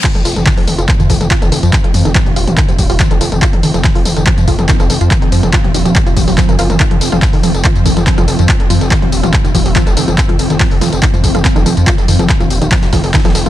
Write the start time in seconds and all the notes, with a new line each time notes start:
0.04 F3 C4, kick, clap, closed hi-hat, crash, tambourine
0.15 F1, closed hi-hat, mid tom
0.25 F1 F4, closed hi-hat, open hi-hat, tambourine
0.36 F1, snare, closed hi-hat, mid tom, tambourine
0.46 D#3, kick, snare, clap, closed hi-hat, open hi-hat, tambourine
0.57 F1 F3, open hi-hat
0.67 F1, closed hi-hat, open hi-hat, mid tom, tambourine
0.78 F1 F4, closed hi-hat, tambourine
0.88 kick, clap, closed hi-hat, mid tom, tambourine
1.00 F2 D#3, closed hi-hat, tambourine
1.10 F1 F3, kick, closed hi-hat, open hi-hat, tambourine
1.21 F1, snare, closed hi-hat, mid tom, tambourine
1.31 F4, kick, snare, clap, closed hi-hat, tambourine
1.42 F1, snare, closed hi-hat, mid tom, tambourine
1.52 F1 D#3, closed hi-hat, open hi-hat, tambourine
1.63 F2 F3, closed hi-hat, tambourine
1.73 kick, clap, closed hi-hat, mid tom, tambourine
1.84 F1 F4, snare, closed hi-hat
1.94 F2, closed hi-hat, open hi-hat, mid tom, tambourine
2.05 F1 D#3, snare, closed hi-hat, tambourine
2.15 F3, kick, snare, clap, closed hi-hat, tambourine
2.26 D#1, snare, closed hi-hat, mid tom
2.36 D#1 F4, closed hi-hat, open hi-hat, tambourine
2.47 D#1, closed hi-hat, mid tom, tambourine
2.57 D#3, kick, clap, closed hi-hat, tambourine
2.68 D#1 F3, closed hi-hat, tambourine
2.79 D#1, kick, closed hi-hat, open hi-hat, mid tom, tambourine
2.90 D#1 F4, open hi-hat, tambourine
3.00 kick, snare, clap, closed hi-hat, mid tom, tambourine
3.11 F1 D#3, closed hi-hat, tambourine
3.21 F1 F3, closed hi-hat, open hi-hat, tambourine
3.32 F1, closed hi-hat, mid tom, tambourine
3.42 F4, kick, clap, closed hi-hat, tambourine
3.53 F1, closed hi-hat, mid tom
3.63 F1 D#3, closed hi-hat, open hi-hat, tambourine
3.74 F1 F3, snare, closed hi-hat, tambourine
3.84 kick, snare, clap, closed hi-hat, open hi-hat, mid tom, tambourine
3.95 F1 F4, open hi-hat
4.05 F1, closed hi-hat, open hi-hat, mid tom, tambourine
4.16 F1 D#3, closed hi-hat, tambourine
4.26 F3, kick, clap, closed hi-hat
4.38 F2, closed hi-hat, mid tom, tambourine
4.48 F1 F4, kick, closed hi-hat, open hi-hat, tambourine
4.59 F1, snare, closed hi-hat, mid tom, tambourine
4.69 D#3, kick, snare, clap, closed hi-hat, tambourine
4.80 F1 F3, snare, closed hi-hat, tambourine
4.90 F1, closed hi-hat, open hi-hat, mid tom, tambourine
5.01 F2 F4, closed hi-hat, tambourine
5.11 kick, clap, closed hi-hat, mid tom, tambourine
5.22 F1 D#3, snare, closed hi-hat
5.32 F2 F3, closed hi-hat, open hi-hat, tambourine
5.43 F1, snare, closed hi-hat, mid tom, tambourine
5.53 F4, kick, snare, clap, closed hi-hat, tambourine
5.64 D#1, snare, closed hi-hat, mid tom
5.74 D#1 D#3, closed hi-hat, open hi-hat, tambourine
5.85 D#1 F3, closed hi-hat, tambourine
5.96 kick, clap, closed hi-hat, mid tom, tambourine
6.06 D#1 F4, closed hi-hat, tambourine
6.17 D#1, kick, closed hi-hat, open hi-hat, mid tom, tambourine
6.28 D#1 F#3, open hi-hat, tambourine
6.38 F3, kick, snare, clap, closed hi-hat, tambourine
6.49 F#1 F3, closed hi-hat, mid tom, tambourine
6.59 F#1 F4, closed hi-hat, open hi-hat, tambourine
6.70 F#1, closed hi-hat, mid tom, tambourine
6.80 D#3, kick, clap, closed hi-hat, tambourine
6.91 F1 F3, closed hi-hat, mid tom
7.01 F1, closed hi-hat, open hi-hat, tambourine
7.12 F1 F4, snare, closed hi-hat, mid tom, tambourine
7.22 kick, snare, clap, closed hi-hat, open hi-hat, tambourine
7.33 F1 D#3, open hi-hat
7.43 F1 F3, closed hi-hat, open hi-hat, mid tom, tambourine
7.54 F1, closed hi-hat, tambourine
7.64 F4, kick, clap, closed hi-hat, mid tom, tambourine
7.76 F2, closed hi-hat, tambourine
7.86 F1 D#3, kick, closed hi-hat, open hi-hat, tambourine
7.97 F1 F3, snare, closed hi-hat, mid tom, tambourine
8.07 kick, snare, clap, closed hi-hat, tambourine
8.18 F1 F4, snare, closed hi-hat, mid tom, tambourine
8.28 F1, closed hi-hat, open hi-hat, tambourine
8.39 F2 D#3, closed hi-hat, tambourine
8.49 F3, kick, clap, closed hi-hat, mid tom, tambourine
8.60 F1, snare, closed hi-hat
8.70 F2 F4, closed hi-hat, open hi-hat, mid tom, tambourine
8.81 F1, snare, closed hi-hat, tambourine
8.91 D#3, kick, snare, clap, closed hi-hat, tambourine
9.02 D#1 F3, snare, closed hi-hat, mid tom
9.12 D#1, closed hi-hat, open hi-hat, tambourine
9.23 D#1 F4, closed hi-hat, mid tom, tambourine
9.33 kick, clap, closed hi-hat, tambourine
9.44 D#1 D#3, closed hi-hat, tambourine
9.55 D#1 F3, kick, closed hi-hat, open hi-hat, mid tom, tambourine
9.66 D#1, open hi-hat, tambourine
9.76 F4, kick, snare, clap, closed hi-hat, mid tom, tambourine
9.87 F1, closed hi-hat, tambourine
9.97 F1 D#3, closed hi-hat, open hi-hat, tambourine
10.08 F1 F3, closed hi-hat, mid tom, tambourine
10.18 kick, clap, closed hi-hat, tambourine
10.29 F1 F4, closed hi-hat, mid tom
10.39 F1, closed hi-hat, open hi-hat, tambourine
10.50 F1 D#3, snare, closed hi-hat, tambourine
10.60 F3, kick, snare, clap, closed hi-hat, open hi-hat, mid tom, tambourine
10.71 F1, open hi-hat
10.81 F1 F4, snare, open hi-hat, mid tom, tambourine
10.92 F1, closed hi-hat, tambourine
11.02 D#3, kick, clap, closed hi-hat, tambourine
11.13 F2 F3, closed hi-hat, mid tom, tambourine
11.24 F1, kick, closed hi-hat, open hi-hat, tambourine
11.35 F1 F4, snare, closed hi-hat, mid tom, tambourine
11.45 kick, snare, clap, closed hi-hat, tambourine
11.56 F1 D#3, snare, closed hi-hat, tambourine
11.66 F1 F3, closed hi-hat, open hi-hat, mid tom, tambourine
11.77 F2, closed hi-hat, tambourine
11.87 F4, kick, clap, closed hi-hat, mid tom, tambourine
11.98 F1, snare, closed hi-hat, tambourine
12.08 F2 D#3, closed hi-hat, open hi-hat, tambourine
12.19 F1 F3, snare, closed hi-hat, mid tom, tambourine
12.29 kick, snare, clap, closed hi-hat, tambourine
12.40 D#1 F4, snare, closed hi-hat, mid tom, tambourine
12.50 D#1, closed hi-hat, open hi-hat, tambourine
12.62 D#1 D#3, closed hi-hat, tambourine
12.72 F3, kick, snare, clap, closed hi-hat, open hi-hat, mid tom, tambourine
12.83 D#1, snare, closed hi-hat, open hi-hat, tambourine
12.93 F1 F4, kick, snare, open hi-hat, mid tom, tambourine
13.04 F1, open hi-hat, tambourine
13.14 D#3, kick, snare, clap, closed hi-hat, open hi-hat, tambourine
13.19 snare, open hi-hat
13.25 F1 F3, snare, closed hi-hat, open hi-hat, mid tom, tambourine
13.30 snare, open hi-hat
13.35 F1, snare, open hi-hat, tambourine
13.46 F1 F4, closed hi-hat, mid tom, tambourine